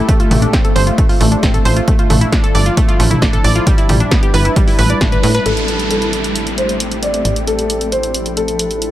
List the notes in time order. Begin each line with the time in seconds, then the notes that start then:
Already playing: A3
0.08 A3 D4 F4, kick, closed hi-hat
0.20 F4, closed hi-hat
0.31 A1 A3, open hi-hat, mid tom
0.42 D4, closed hi-hat
0.53 C4, kick, snare, closed hi-hat
0.64 A4, closed hi-hat
0.76 G1 C5, open hi-hat
0.87 F4, closed hi-hat
0.98 A3, kick, closed hi-hat
1.09 F4, open hi-hat
1.20 A1 A3, open hi-hat
1.32 D4, closed hi-hat
1.43 A1 C4, kick, snare, closed hi-hat
1.54 A4, closed hi-hat
1.65 A1 C5, open hi-hat
1.76 F4, closed hi-hat
1.88 F3 A3 D4 E4, kick, closed hi-hat
1.99 F4, closed hi-hat
2.10 A1 A3, open hi-hat, mid tom
2.21 E4, closed hi-hat
2.32 D4, kick, snare, closed hi-hat
2.43 A4, closed hi-hat
2.55 G1 D5, open hi-hat
2.66 F4, closed hi-hat
2.77 A3, kick, closed hi-hat
2.88 F4, closed hi-hat
2.99 A1 A3, open hi-hat
3.11 E4, closed hi-hat, mid tom
3.22 A1 D4, kick, snare, closed hi-hat
3.33 A4, closed hi-hat
3.44 A1 D5, open hi-hat
3.55 F4, closed hi-hat
3.67 G3 D4, kick, closed hi-hat
3.78 E4, closed hi-hat
3.89 A1 G3, open hi-hat, mid tom
4.00 D4, closed hi-hat
4.11 B3, kick, snare, closed hi-hat
4.23 G4, closed hi-hat
4.34 G1 B4, open hi-hat
4.45 E4, closed hi-hat
4.56 G3, kick, closed hi-hat
4.67 E4, open hi-hat
4.79 A1 B4, open hi-hat
4.90 D5, closed hi-hat
5.01 A1 D4, kick, snare, closed hi-hat
5.12 B4, closed hi-hat
5.23 A2 B4, open hi-hat
5.34 B4, closed hi-hat
5.46 A1 A3 C4 G4 A4, closed hi-hat, downlifter
5.57 closed hi-hat
5.68 closed hi-hat
5.79 closed hi-hat
5.90 A4, closed hi-hat
6.02 closed hi-hat
6.13 closed hi-hat
6.24 closed hi-hat
6.36 closed hi-hat
6.47 closed hi-hat
6.58 C5, closed hi-hat
6.69 closed hi-hat
6.80 closed hi-hat
6.92 closed hi-hat
7.03 D5, closed hi-hat
7.14 closed hi-hat
7.25 A1 F3 D4 E4, closed hi-hat
7.36 closed hi-hat
7.47 A4, closed hi-hat
7.59 closed hi-hat
7.70 closed hi-hat
7.81 closed hi-hat
7.92 C5, closed hi-hat
8.03 closed hi-hat
8.14 closed hi-hat
8.26 closed hi-hat
8.37 A4, closed hi-hat
8.48 closed hi-hat
8.59 closed hi-hat
8.71 closed hi-hat
8.82 closed hi-hat